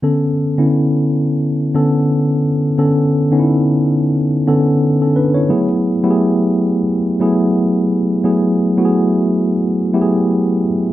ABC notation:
X:1
M:4/4
L:1/16
Q:"Swing 16ths" 1/4=88
K:Bdor
V:1 name="Tine electric piano"
z16 | z12 z [CA] [DB] [Ec]- | [Ec] z12 z3 | z16 |]
V:2 name="Tine electric piano"
[D,B,CA]2 z [D,B,CE]4- [D,B,CE] z2 [D,B,CA]4 z2 | [D,B,CA]2 z [D,B,C^DE]4- [=D,B,C^DE] z2 [=D,B,CA]4 z2 | [F,A,B,EG]2 z [F,A,B,E=G^G]4- [F,A,B,E=G^G] z2 [F,A,B,EG]4 z2 | [F,A,B,EG]2 z [F,A,B,EFG]4- [F,A,B,EFG] z2 [F,A,B,E=G^G]4 z2 |]